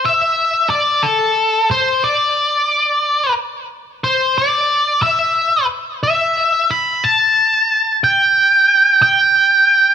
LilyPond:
\new Staff \with { instrumentName = "Lead electric guitar" } { \time 6/8 \key a \minor \tempo 4. = 60 e''4 d''8 a'4 c''8 | d''2 r4 | c''8 d''4 e''4 r8 | e''4 b''8 a''4. |
g''4. g''4. | }